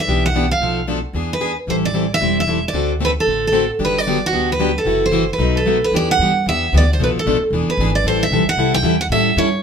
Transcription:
0.00 steel-string acoustic guitar E5
0.07 upright bass B1, steel-string acoustic guitar E3 B3 D4 G4
0.26 steel-string acoustic guitar F#5
0.35 steel-string acoustic guitar E3 B3 D4 G4
0.51 steel-string acoustic guitar F5
0.60 upright bass B1, steel-string acoustic guitar B2 F3 A3 D4 A4
0.87 steel-string acoustic guitar B2 F3 A3 D4 A4
1.13 upright bass E2, steel-string acoustic guitar E3 B3 D4 G#4
1.33 steel-string acoustic guitar B4
1.40 steel-string acoustic guitar E3 B3 D4 G#4
1.67 upright bass A1, steel-string acoustic guitar E3 G3 C4 E4 A4 C5
1.85 steel-string acoustic guitar D5
1.93 steel-string acoustic guitar E3 G3 C4 E4 A4
2.14 steel-string acoustic guitar E5
2.20 upright bass E1, steel-string acoustic guitar E3 G3 C4 E4 A4
2.40 steel-string acoustic guitar E5
2.47 steel-string acoustic guitar E3 G3 C4 E4 A4
2.68 steel-string acoustic guitar D5
2.73 upright bass D2, steel-string acoustic guitar D3 A3 C4 F#4 A4
3.00 steel-string acoustic guitar D3 A3 C4 F#4 A4
3.05 steel-string acoustic guitar B4
3.20 steel-string acoustic guitar A4
3.26 upright bass A1, steel-string acoustic guitar D3 A3 C4 F#4 A4
3.47 steel-string acoustic guitar A4
3.52 steel-string acoustic guitar D3 A3 C4 F#4 A4
3.79 upright bass G1, steel-string acoustic guitar D3 F#3 B3 D4 G4
3.85 steel-string acoustic guitar B4
3.98 steel-string acoustic guitar D5
4.07 steel-string acoustic guitar D3 F#3 B3 D4 G4
4.26 steel-string acoustic guitar F#4
4.32 upright bass D2, steel-string acoustic guitar D3 F#3 B3 D4 G4
4.52 steel-string acoustic guitar B4
4.59 steel-string acoustic guitar D3 F#3 B3 D4 G4
4.78 steel-string acoustic guitar A4
4.85 upright bass F#1, steel-string acoustic guitar C3 E3 A3 E4 F#4
5.06 steel-string acoustic guitar C5
5.11 steel-string acoustic guitar C3 E3 A3 E4 F#4
5.33 steel-string acoustic guitar B4
5.38 upright bass B1, steel-string acoustic guitar B2 F#3 A3 D#4 F#4
5.57 steel-string acoustic guitar A4
5.66 steel-string acoustic guitar B2 F#3 A3 D#4 F#4
5.84 steel-string acoustic guitar B4
5.91 upright bass E2, steel-string acoustic guitar E3 B3 D4 G4
5.96 steel-string acoustic guitar D5
6.11 steel-string acoustic guitar F#5
6.19 upright bass G2, steel-string acoustic guitar E3 B3 D4 G4
6.46 upright bass E2, steel-string acoustic guitar E3 B3 D4 G4 E5
6.73 upright bass D2, steel-string acoustic guitar E3 B3 D4 G4
6.77 steel-string acoustic guitar D5
6.93 steel-string acoustic guitar C5
6.99 upright bass B1, steel-string acoustic guitar B2 F3 A3 D4 A4
7.04 steel-string acoustic guitar B4
7.14 muted upright bass stroke
7.19 steel-string acoustic guitar A4
7.26 upright bass A1, steel-string acoustic guitar B2 F3 A3 D4 A4
7.50 upright bass E1, steel-string acoustic guitar E3 B3 D4 G#4
7.67 steel-string acoustic guitar B4, muted upright bass stroke
7.77 upright bass G#1, steel-string acoustic guitar E3 B3 D4 G#4
7.95 steel-string acoustic guitar D5
8.04 upright bass A1, steel-string acoustic guitar E3 G3 C4 E4 A4 C5
8.23 steel-string acoustic guitar E5
8.31 upright bass B1, steel-string acoustic guitar E3 G3 C4 E4 A4
8.45 steel-string acoustic guitar F#5, muted upright bass stroke
8.56 upright bass C2, steel-string acoustic guitar E3 G3 C4 E4 A4
8.74 steel-string acoustic guitar G5
8.82 upright bass E2, steel-string acoustic guitar E3 G3 C4 E4 A4
9.01 steel-string acoustic guitar F#5
9.09 upright bass A2, steel-string acoustic guitar E3 G3 C#4 E4 A4 E5
9.36 upright bass G2, steel-string acoustic guitar E3 G3 C#4 E4 A4 C#5

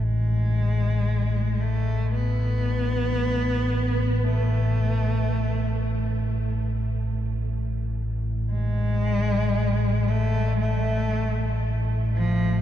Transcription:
Already playing: synth drone A1 A2
0.03 cello G#3
1.60 cello A3
2.13 cello B3
4.23 cello A3
8.49 cello G#3
10.07 cello A3
10.60 cello A3
12.15 cello F3

